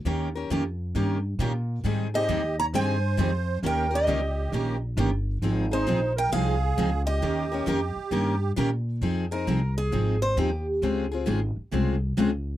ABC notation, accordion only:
X:1
M:4/4
L:1/8
Q:"Swing" 1/4=134
K:Ebmix
V:1 name="Accordion"
z8 | z G2 d c4 | B G4 z3 | z E2 B A3 G- |
G6 z2 | [K:Fm] z8 | z8 |]